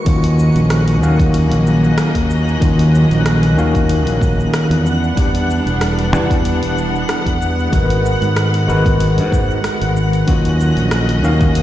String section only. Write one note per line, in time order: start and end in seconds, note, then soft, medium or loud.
0.06 4.81 D#3 medium
0.06 4.81 F#3 medium
0.06 4.81 A#3 medium
0.06 4.81 C#4 medium
0.06 4.81 D#5 medium
4.85 7.69 E3 medium
4.85 7.69 G3 medium
4.85 10.23 B3 medium
4.85 7.69 D4 medium
4.85 10.23 F#5 medium
7.73 11.62 D#3 medium
7.73 10.26 G#3 medium
10.28 11.62 F#3 medium
10.28 11.62 C#4 medium
10.28 11.62 D#5 medium